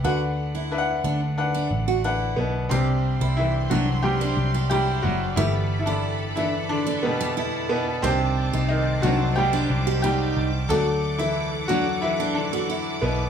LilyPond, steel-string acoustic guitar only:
\new Staff \with { instrumentName = "Steel-string acoustic guitar" } { \time 4/4 \key c \lydian \tempo 4 = 90 fis'16 r8 e'8 r16 d'16 r8 d'16 r16 fis'16 e'8. r16 | g'16 r8 e'8 r16 d'16 r8 d'16 r16 g'16 e'8. r16 | g'16 r8 e'8 r16 d'16 r8 d'16 r16 g'16 e'8. r16 | g'16 r8 ees'8 r16 d'16 r8 d'16 r16 g'16 ees'8. r16 |
fis'16 r8 e'8 r16 d'16 r8 d'16 r16 fis'16 e'8. r16 | }